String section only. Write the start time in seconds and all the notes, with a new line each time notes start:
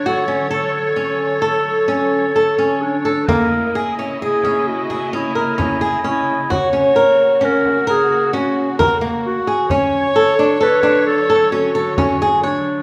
Already playing: D3 F#3 C#5
3.27 C#3 A#3 E4 D#5
6.50 A#3 F#4
9.70 D3 F#3 C#5